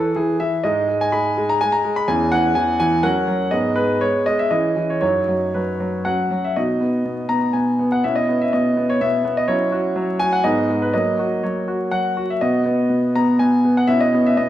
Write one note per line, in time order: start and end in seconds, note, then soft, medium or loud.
0.00 0.14 E3 soft
0.00 0.61 E4 soft
0.00 0.14 G#4 soft
0.00 0.17 A4 medium
0.16 0.39 E3 medium
0.16 0.41 G#4 medium
0.40 0.64 E3 soft
0.40 0.64 E5 medium
0.63 0.88 G#2 soft
0.63 0.87 G#3 medium
0.63 2.04 D#4 soft
0.63 2.04 G#4 soft
0.63 1.00 D#5 medium
0.88 1.11 G#3 soft
1.01 1.13 G#5 medium
1.12 1.36 G#3 medium
1.12 1.49 B5 medium
1.37 1.60 G#3 medium
1.49 1.61 A#5 medium
1.61 1.83 G#3 medium
1.61 1.73 G#5 medium
1.72 1.96 A#5 medium
1.84 2.08 G#3 medium
1.96 2.08 B5 medium
2.08 2.31 E2 medium
2.08 2.31 E3 medium
2.08 3.00 C#4 soft
2.08 3.00 G#4 soft
2.08 2.32 G#5 medium
2.32 2.54 E3 medium
2.32 2.56 F#5 medium
2.55 2.78 E3 soft
2.55 2.78 G#5 medium
2.80 3.03 E3 medium
2.80 3.04 G#5 medium
3.03 3.26 F#3 medium
3.03 3.48 C#4 soft
3.03 3.48 A#4 soft
3.03 3.27 F#5 medium
3.28 3.51 F#3 medium
3.51 3.75 G#2 medium
3.51 3.75 G#3 soft
3.51 4.46 B3 soft
3.51 4.46 G#4 soft
3.51 3.76 D#5 medium
3.76 4.00 G#3 soft
3.76 4.00 B4 medium
4.01 4.25 G#3 soft
4.01 4.26 C#5 medium
4.26 4.50 G#3 medium
4.26 4.38 D#5 medium
4.39 4.51 E5 medium
4.51 4.75 E3 medium
4.51 4.98 C#4 soft
4.51 4.99 G#4 soft
4.51 4.89 D#5 medium
4.76 5.01 E3 medium
4.90 4.99 C#5 medium
5.01 5.27 F#2 soft
5.01 5.27 F#3 soft
5.01 6.02 D#4 soft
5.01 6.01 F#4 soft
5.01 5.54 C#5 medium
5.28 5.53 F#3 soft
5.54 5.78 F#3 soft
5.54 6.06 B4 soft
5.80 6.04 F#3 soft
6.05 6.29 F#3 medium
6.05 6.53 C#4 soft
6.05 6.53 F#4 soft
6.05 6.44 F#5 medium
6.31 6.56 F#3 soft
6.44 6.57 E5 medium
6.56 7.04 B2 soft
6.56 7.99 D#4 soft
6.56 7.99 F#4 soft
6.56 7.30 D#5 medium
6.81 7.28 B3 soft
7.05 7.52 B2 soft
7.29 7.78 B3 soft
7.29 7.54 A#5 medium
7.53 8.01 B2 soft
7.53 7.90 G#5 medium
7.79 8.03 B3 soft
7.92 8.04 F#5 medium
8.04 8.52 B2 soft
8.04 9.43 C#4 soft
8.04 9.43 E4 soft
8.04 8.16 E5 medium
8.15 8.39 D#5 medium
8.29 8.76 B3 soft
8.42 8.52 E5 medium
8.53 9.00 B2 soft
8.53 8.88 D#5 medium
8.77 9.23 B3 soft
8.90 9.00 C#5 medium
9.01 9.46 B2 medium
9.01 9.36 E5 medium
9.25 9.47 B3 medium
9.37 9.48 D#5 medium
9.48 9.94 F#3 soft
9.48 10.40 C#4 soft
9.48 10.40 E4 soft
9.48 10.19 C#5 medium
9.72 10.18 F#4 medium
9.96 10.42 F#3 medium
10.19 10.43 F#4 medium
10.19 10.31 G#5 medium
10.32 10.44 F#5 medium
10.44 10.92 G#2 medium
10.44 10.90 B3 soft
10.44 10.90 D#4 soft
10.44 10.81 D#5 medium
10.69 10.93 G#3 soft
10.82 10.94 B4 medium
10.93 11.42 F#3 medium
10.93 12.38 A#3 soft
10.93 11.18 F#4 soft
10.93 11.43 D#5 medium
11.19 11.66 F#4 soft
11.43 11.91 F#3 soft
11.43 11.92 C#5 soft
11.68 12.15 F#4 soft
11.91 12.40 F#3 soft
11.91 12.29 F#5 medium
12.17 12.41 F#4 soft
12.30 12.42 E5 medium
12.41 12.88 B2 medium
12.41 12.64 B3 soft
12.41 13.85 F#4 soft
12.41 13.15 D#5 medium
12.66 13.14 B3 soft
12.90 13.39 B2 soft
13.15 13.63 B3 medium
13.15 13.40 A#5 medium
13.39 13.87 B2 soft
13.39 13.76 G#5 medium
13.65 13.88 B3 soft
13.77 13.89 F#5 medium
13.87 14.36 B2 medium
13.87 14.49 C#4 soft
13.87 14.49 E4 soft
13.87 14.00 E5 medium
14.00 14.25 D#5 medium
14.14 14.49 B3 medium
14.26 14.38 E5 medium
14.37 14.49 B2 medium
14.37 14.49 D#5 medium